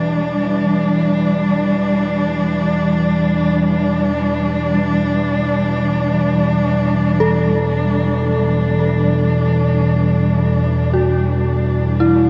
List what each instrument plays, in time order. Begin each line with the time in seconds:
Already playing: synth drone E2 B2, cello section E3 G3 D4
7.20 synth bell A4
10.93 synth bell F#4
12.00 synth bell E4